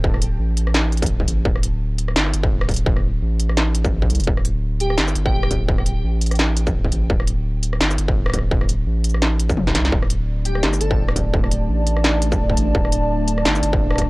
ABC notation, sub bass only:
X:1
M:4/4
L:1/16
Q:"Swing 16ths" 1/4=170
K:Cmix
V:1 name="Sub bass" clef=bass
D,,,4 A,,,8 D,,,2 A,,,2 | D,,,8 G,,,2 G,,,2 D,,,4- | D,,,4 A,,,8- A,,,2 C,, D,,, | D,,,8 G,,,2 G,,,2 D,,,4- |
D,,,4 A,,,8 D,,,2 A,,,2 | D,,,8 G,,,2 G,,,2 D,,,4- | D,,,4 A,,,8 E,,,2 C,,2 | D,,,8 G,,,2 G,,,2 D,,,4- |
D,,,4 A,,,8 D,,,2 A,,,2 | D,,,8 G,,,2 G,,,2 D,,,4 |]